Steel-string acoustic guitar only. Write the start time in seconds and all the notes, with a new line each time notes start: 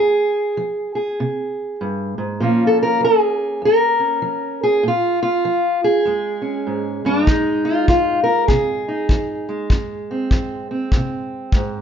Already playing: F2 G#4
0.57 F3
0.95 G#4
1.20 C3
1.81 G2
2.18 G#2
2.40 A#2 F3 A#3 C#4 F4
2.67 A4
2.83 A#4
3.00 F3
3.05 G#4
3.62 F2 A#4
4.00 C#4
4.22 F3
4.63 G#4
4.83 A#2
4.88 F4
5.23 F4
5.45 F3
5.84 G#4
6.05 F2 G#3
6.42 C#4
6.67 G#2
7.05 G2 D4
7.26 F2 G#3 D#4
7.65 F4
7.89 F3 F4
8.23 A#4
8.48 C3 G#4
8.88 D#4
9.12 F3
9.49 G#3
9.72 F2
10.11 C4
10.33 F3
10.71 C4
10.96 C3
11.55 G#2